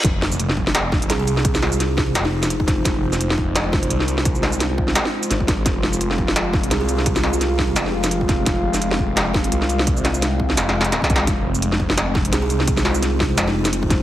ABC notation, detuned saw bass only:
X:1
M:4/4
L:1/8
Q:"Swing 16ths" 1/4=171
K:Fm
V:1 name="Detuned saw bass" clef=bass
F,,,3 F,,,3 C,,2- | C,,4 F,,,4 | F,,,3 F,,,3 C,,2- | C,,4 z2 A,,,2 |
F,,,3 F,,,3 C,,2- | C,,4 F,,,4 | F,,,3 F,,,3 C,,2- | C,,4 F,,,3 C,, |
F,,,3 F,,,3 C,,2- | C,,4 F,,,4 |]